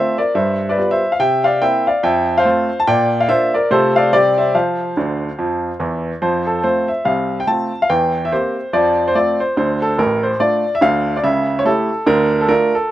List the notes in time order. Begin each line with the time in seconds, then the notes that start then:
Already playing: A3 C4 F4 C5 E5
0.18 A#4 D5
0.35 G2 C5 E5
0.69 B4 D5
0.77 G3 B3 F4
0.91 C5 E5
1.12 F5
1.19 C3 E5 G5
1.44 D5 F5
1.62 A#3 C4 E4 E5 G5
1.87 D5 F5
2.03 F2 E5 G5
2.38 C5 F5
2.45 A3 C4 F4
2.80 A5
2.87 A#2 D5 G5
3.21 F5
3.28 A#3 D4 F4 C5 E5
3.54 A#4 D5
3.71 C3 A3 C4 F4 A4 C5
3.96 D5 F5
4.13 C3 G3 C4 G4 D5
4.38 C5 E5
4.55 F3 C5 F5
4.97 D2 D3
5.39 F2 F3
5.80 E2 E3
6.22 F2 F3 C5
6.47 A4
6.64 A3 C4 F4 C5
6.88 E5
7.05 C2 C3 F5
7.40 G5
7.47 A3 C4 F4 A5
7.82 F5
7.90 E2 E3 G5
8.25 E5
8.32 A#3 C4 G4 C5
8.73 F2 F3 D5
9.08 C5
9.15 A3 C4 F4 D5
9.40 C5
9.57 D2 D3 C5
9.82 A4
9.98 A1 A2 A#4
10.23 C5
10.40 A3 D4 F4 D5
10.75 E5
10.81 D2 D3 F5
11.17 D5
11.23 C#2 C#3 E5
11.59 C#5
11.65 A3 E4 G4 A4
12.07 D2 D3 A#4
12.41 A4
12.48 A3 D4 F4 A#4
12.75 A4